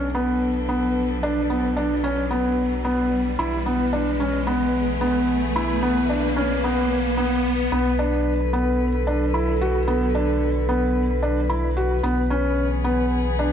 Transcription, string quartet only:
0, 0, Header, 1, 2, 480
1, 0, Start_track
1, 0, Tempo, 540541
1, 1092, Time_signature, 4, 2, 24, 8
1, 12009, End_track
2, 0, Start_track
2, 0, Title_t, "String quartet"
2, 0, Program_c, 0, 48
2, 0, Note_on_c, 0, 54, 71
2, 0, Note_on_c, 0, 59, 84
2, 0, Note_on_c, 0, 62, 71
2, 0, Note_on_c, 0, 69, 72
2, 141, Note_off_c, 0, 59, 0
2, 157, Note_on_c, 0, 71, 85
2, 3011, Note_off_c, 0, 69, 0
2, 3012, Note_on_c, 0, 52, 79
2, 3014, Note_off_c, 0, 54, 0
2, 3400, Note_on_c, 0, 59, 68
2, 3724, Note_off_c, 0, 62, 0
2, 3852, Note_on_c, 0, 68, 73
2, 6852, Note_off_c, 0, 52, 0
2, 6852, Note_off_c, 0, 68, 0
2, 6854, Note_on_c, 0, 54, 79
2, 7028, Note_on_c, 0, 50, 72
2, 7459, Note_off_c, 0, 59, 0
2, 7494, Note_on_c, 0, 69, 95
2, 10688, Note_on_c, 0, 52, 89
2, 10692, Note_off_c, 0, 69, 0
2, 10693, Note_off_c, 0, 54, 0
2, 10941, Note_on_c, 0, 59, 97
2, 10994, Note_on_c, 0, 68, 84
2, 11978, Note_off_c, 0, 50, 0
2, 12009, Note_off_c, 0, 52, 0
2, 12009, Note_off_c, 0, 59, 0
2, 12009, Note_off_c, 0, 68, 0
2, 12009, Note_off_c, 0, 71, 0
2, 12009, End_track
0, 0, End_of_file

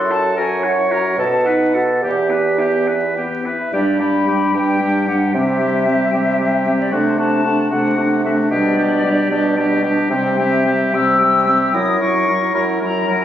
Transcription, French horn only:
0, 0, Header, 1, 2, 480
1, 0, Start_track
1, 0, Tempo, 542986
1, 330, Time_signature, 6, 3, 24, 8
1, 1294, Tempo, 561798
1, 3694, Tempo, 529101
1, 8494, Tempo, 540541
1, 11764, End_track
2, 0, Start_track
2, 0, Title_t, "French horn"
2, 0, Program_c, 0, 60
2, 0, Note_on_c, 0, 64, 36
2, 92, Note_on_c, 0, 66, 34
2, 105, Note_off_c, 0, 64, 0
2, 327, Note_off_c, 0, 66, 0
2, 332, Note_on_c, 0, 66, 36
2, 569, Note_on_c, 0, 64, 33
2, 582, Note_off_c, 0, 66, 0
2, 811, Note_on_c, 0, 66, 29
2, 824, Note_off_c, 0, 64, 0
2, 1042, Note_off_c, 0, 66, 0
2, 1047, Note_on_c, 0, 66, 29
2, 1292, Note_on_c, 0, 63, 29
2, 1305, Note_off_c, 0, 66, 0
2, 1530, Note_on_c, 0, 66, 26
2, 1543, Note_off_c, 0, 63, 0
2, 1774, Note_off_c, 0, 66, 0
2, 1779, Note_on_c, 0, 59, 30
2, 2010, Note_on_c, 0, 64, 26
2, 2023, Note_off_c, 0, 59, 0
2, 2257, Note_on_c, 0, 59, 23
2, 2270, Note_off_c, 0, 64, 0
2, 2503, Note_on_c, 0, 64, 27
2, 2516, Note_off_c, 0, 59, 0
2, 2741, Note_off_c, 0, 64, 0
2, 2746, Note_on_c, 0, 59, 25
2, 2988, Note_on_c, 0, 64, 26
2, 3001, Note_off_c, 0, 59, 0
2, 3224, Note_off_c, 0, 64, 0
2, 3229, Note_on_c, 0, 55, 36
2, 3458, Note_off_c, 0, 55, 0
2, 3462, Note_on_c, 0, 55, 29
2, 3684, Note_off_c, 0, 55, 0
2, 3689, Note_on_c, 0, 55, 30
2, 3928, Note_off_c, 0, 55, 0
2, 3933, Note_on_c, 0, 55, 30
2, 4167, Note_off_c, 0, 55, 0
2, 4173, Note_on_c, 0, 55, 31
2, 4415, Note_off_c, 0, 55, 0
2, 4423, Note_on_c, 0, 55, 31
2, 4654, Note_off_c, 0, 55, 0
2, 4659, Note_on_c, 0, 55, 37
2, 4893, Note_off_c, 0, 55, 0
2, 4900, Note_on_c, 0, 55, 31
2, 5133, Note_off_c, 0, 55, 0
2, 5144, Note_on_c, 0, 55, 32
2, 5376, Note_off_c, 0, 55, 0
2, 5381, Note_on_c, 0, 55, 31
2, 5613, Note_off_c, 0, 55, 0
2, 5619, Note_on_c, 0, 55, 34
2, 5854, Note_off_c, 0, 55, 0
2, 5859, Note_on_c, 0, 55, 34
2, 6092, Note_off_c, 0, 55, 0
2, 6096, Note_on_c, 0, 57, 40
2, 6329, Note_off_c, 0, 57, 0
2, 6337, Note_on_c, 0, 57, 33
2, 6568, Note_off_c, 0, 57, 0
2, 6577, Note_on_c, 0, 57, 33
2, 6806, Note_off_c, 0, 57, 0
2, 6811, Note_on_c, 0, 57, 34
2, 7048, Note_off_c, 0, 57, 0
2, 7054, Note_on_c, 0, 57, 36
2, 7290, Note_off_c, 0, 57, 0
2, 7298, Note_on_c, 0, 57, 34
2, 7531, Note_off_c, 0, 57, 0
2, 7536, Note_on_c, 0, 55, 40
2, 7769, Note_off_c, 0, 55, 0
2, 7778, Note_on_c, 0, 55, 35
2, 8008, Note_off_c, 0, 55, 0
2, 8013, Note_on_c, 0, 55, 37
2, 8250, Note_off_c, 0, 55, 0
2, 8255, Note_on_c, 0, 55, 36
2, 8491, Note_off_c, 0, 55, 0
2, 8502, Note_on_c, 0, 55, 37
2, 8726, Note_off_c, 0, 55, 0
2, 8731, Note_on_c, 0, 55, 42
2, 8965, Note_off_c, 0, 55, 0
2, 8970, Note_on_c, 0, 55, 46
2, 9210, Note_off_c, 0, 55, 0
2, 9217, Note_on_c, 0, 55, 39
2, 9461, Note_off_c, 0, 55, 0
2, 9466, Note_on_c, 0, 55, 40
2, 9707, Note_off_c, 0, 55, 0
2, 9714, Note_on_c, 0, 55, 42
2, 9946, Note_off_c, 0, 55, 0
2, 9952, Note_on_c, 0, 55, 43
2, 10182, Note_off_c, 0, 55, 0
2, 10189, Note_on_c, 0, 55, 42
2, 10414, Note_off_c, 0, 55, 0
2, 10420, Note_on_c, 0, 54, 50
2, 10653, Note_off_c, 0, 54, 0
2, 10658, Note_on_c, 0, 54, 43
2, 10888, Note_off_c, 0, 54, 0
2, 10893, Note_on_c, 0, 54, 42
2, 11128, Note_off_c, 0, 54, 0
2, 11134, Note_on_c, 0, 54, 48
2, 11369, Note_off_c, 0, 54, 0
2, 11378, Note_on_c, 0, 54, 44
2, 11609, Note_off_c, 0, 54, 0
2, 11614, Note_on_c, 0, 54, 44
2, 11764, Note_off_c, 0, 54, 0
2, 11764, End_track
0, 0, End_of_file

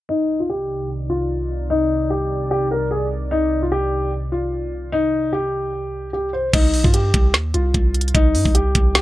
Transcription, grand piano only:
0, 0, Header, 1, 2, 480
1, 0, Start_track
1, 0, Key_signature, -3, "minor"
1, 0, Tempo, 402685
1, 110, Time_signature, 4, 2, 24, 8
1, 10748, End_track
2, 0, Start_track
2, 0, Title_t, "Grand piano"
2, 0, Program_c, 0, 0
2, 107, Note_on_c, 0, 63, 104
2, 453, Note_off_c, 0, 63, 0
2, 477, Note_on_c, 0, 65, 74
2, 563, Note_off_c, 0, 65, 0
2, 591, Note_on_c, 0, 67, 79
2, 1042, Note_off_c, 0, 67, 0
2, 1307, Note_on_c, 0, 65, 79
2, 1985, Note_off_c, 0, 65, 0
2, 2028, Note_on_c, 0, 63, 110
2, 2480, Note_off_c, 0, 63, 0
2, 2507, Note_on_c, 0, 67, 81
2, 2959, Note_off_c, 0, 67, 0
2, 2992, Note_on_c, 0, 67, 94
2, 3173, Note_off_c, 0, 67, 0
2, 3232, Note_on_c, 0, 70, 81
2, 3414, Note_off_c, 0, 70, 0
2, 3466, Note_on_c, 0, 68, 77
2, 3650, Note_off_c, 0, 68, 0
2, 3948, Note_on_c, 0, 63, 106
2, 4294, Note_off_c, 0, 63, 0
2, 4321, Note_on_c, 0, 65, 68
2, 4405, Note_off_c, 0, 65, 0
2, 4431, Note_on_c, 0, 67, 96
2, 4882, Note_off_c, 0, 67, 0
2, 5149, Note_on_c, 0, 65, 75
2, 5826, Note_off_c, 0, 65, 0
2, 5870, Note_on_c, 0, 63, 109
2, 6321, Note_off_c, 0, 63, 0
2, 6350, Note_on_c, 0, 67, 82
2, 7262, Note_off_c, 0, 67, 0
2, 7310, Note_on_c, 0, 67, 72
2, 7492, Note_off_c, 0, 67, 0
2, 7547, Note_on_c, 0, 72, 70
2, 7730, Note_off_c, 0, 72, 0
2, 7787, Note_on_c, 0, 63, 109
2, 8134, Note_off_c, 0, 63, 0
2, 8157, Note_on_c, 0, 65, 81
2, 8243, Note_off_c, 0, 65, 0
2, 8271, Note_on_c, 0, 67, 84
2, 8722, Note_off_c, 0, 67, 0
2, 8988, Note_on_c, 0, 65, 82
2, 9666, Note_off_c, 0, 65, 0
2, 9707, Note_on_c, 0, 63, 112
2, 10159, Note_off_c, 0, 63, 0
2, 10188, Note_on_c, 0, 67, 84
2, 10640, Note_off_c, 0, 67, 0
2, 10673, Note_on_c, 0, 67, 97
2, 10748, Note_off_c, 0, 67, 0
2, 10748, End_track
0, 0, End_of_file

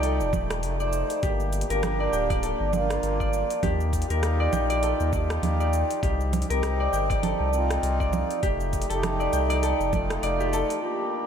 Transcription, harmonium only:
0, 0, Header, 1, 2, 480
1, 0, Start_track
1, 0, Tempo, 600000
1, 984, Time_signature, 4, 2, 24, 8
1, 9014, End_track
2, 0, Start_track
2, 0, Title_t, "Harmonium"
2, 0, Program_c, 0, 20
2, 0, Note_on_c, 0, 57, 105
2, 0, Note_on_c, 0, 63, 89
2, 0, Note_on_c, 0, 67, 114
2, 230, Note_off_c, 0, 57, 0
2, 239, Note_off_c, 0, 63, 0
2, 246, Note_off_c, 0, 67, 0
2, 257, Note_on_c, 0, 57, 69
2, 264, Note_on_c, 0, 63, 65
2, 272, Note_on_c, 0, 67, 83
2, 476, Note_off_c, 0, 57, 0
2, 480, Note_off_c, 0, 63, 0
2, 484, Note_off_c, 0, 67, 0
2, 493, Note_on_c, 0, 57, 84
2, 502, Note_on_c, 0, 63, 74
2, 510, Note_on_c, 0, 65, 92
2, 604, Note_off_c, 0, 57, 0
2, 608, Note_off_c, 0, 63, 0
2, 612, Note_off_c, 0, 65, 0
2, 630, Note_on_c, 0, 57, 73
2, 637, Note_on_c, 0, 63, 68
2, 646, Note_on_c, 0, 72, 87
2, 953, Note_off_c, 0, 57, 0
2, 957, Note_off_c, 0, 63, 0
2, 962, Note_off_c, 0, 72, 0
2, 972, Note_on_c, 0, 58, 69
2, 980, Note_on_c, 0, 62, 67
2, 988, Note_on_c, 0, 67, 76
2, 1323, Note_off_c, 0, 58, 0
2, 1327, Note_off_c, 0, 62, 0
2, 1331, Note_off_c, 0, 67, 0
2, 1343, Note_on_c, 0, 58, 101
2, 1359, Note_on_c, 0, 62, 93
2, 1376, Note_on_c, 0, 67, 108
2, 2150, Note_off_c, 0, 58, 0
2, 2158, Note_off_c, 0, 62, 0
2, 2167, Note_off_c, 0, 67, 0
2, 2167, Note_on_c, 0, 58, 99
2, 2182, Note_on_c, 0, 62, 92
2, 2199, Note_on_c, 0, 65, 113
2, 2871, Note_off_c, 0, 58, 0
2, 2879, Note_off_c, 0, 62, 0
2, 2887, Note_off_c, 0, 65, 0
2, 2892, Note_on_c, 0, 63, 70
2, 2901, Note_on_c, 0, 65, 69
2, 2908, Note_on_c, 0, 67, 78
2, 3243, Note_off_c, 0, 63, 0
2, 3247, Note_off_c, 0, 65, 0
2, 3251, Note_off_c, 0, 67, 0
2, 3266, Note_on_c, 0, 63, 106
2, 3282, Note_on_c, 0, 65, 94
2, 3299, Note_on_c, 0, 67, 107
2, 4072, Note_off_c, 0, 63, 0
2, 4080, Note_off_c, 0, 65, 0
2, 4086, Note_on_c, 0, 63, 102
2, 4088, Note_off_c, 0, 67, 0
2, 4102, Note_on_c, 0, 65, 94
2, 4118, Note_on_c, 0, 67, 108
2, 4791, Note_off_c, 0, 63, 0
2, 4799, Note_off_c, 0, 65, 0
2, 4807, Note_off_c, 0, 67, 0
2, 4814, Note_on_c, 0, 60, 71
2, 4822, Note_on_c, 0, 63, 68
2, 4830, Note_on_c, 0, 67, 81
2, 5164, Note_off_c, 0, 60, 0
2, 5168, Note_off_c, 0, 63, 0
2, 5172, Note_off_c, 0, 67, 0
2, 5186, Note_on_c, 0, 60, 107
2, 5201, Note_on_c, 0, 63, 92
2, 5218, Note_on_c, 0, 67, 104
2, 5992, Note_off_c, 0, 60, 0
2, 5999, Note_off_c, 0, 63, 0
2, 6007, Note_off_c, 0, 67, 0
2, 6009, Note_on_c, 0, 60, 101
2, 6024, Note_on_c, 0, 63, 90
2, 6040, Note_on_c, 0, 65, 112
2, 6712, Note_off_c, 0, 60, 0
2, 6720, Note_off_c, 0, 63, 0
2, 6728, Note_off_c, 0, 65, 0
2, 6734, Note_on_c, 0, 57, 70
2, 6741, Note_on_c, 0, 63, 66
2, 6750, Note_on_c, 0, 67, 81
2, 7084, Note_off_c, 0, 57, 0
2, 7088, Note_off_c, 0, 63, 0
2, 7092, Note_off_c, 0, 67, 0
2, 7105, Note_on_c, 0, 57, 108
2, 7123, Note_on_c, 0, 63, 98
2, 7138, Note_on_c, 0, 67, 118
2, 7911, Note_off_c, 0, 57, 0
2, 7920, Note_off_c, 0, 63, 0
2, 7927, Note_off_c, 0, 67, 0
2, 7927, Note_on_c, 0, 57, 103
2, 7943, Note_on_c, 0, 63, 94
2, 7958, Note_on_c, 0, 65, 109
2, 8631, Note_off_c, 0, 57, 0
2, 8639, Note_off_c, 0, 63, 0
2, 8647, Note_off_c, 0, 65, 0
2, 8647, Note_on_c, 0, 58, 69
2, 8662, Note_on_c, 0, 62, 61
2, 8680, Note_on_c, 0, 67, 78
2, 9014, Note_off_c, 0, 58, 0
2, 9014, Note_off_c, 0, 62, 0
2, 9014, Note_off_c, 0, 67, 0
2, 9014, End_track
0, 0, End_of_file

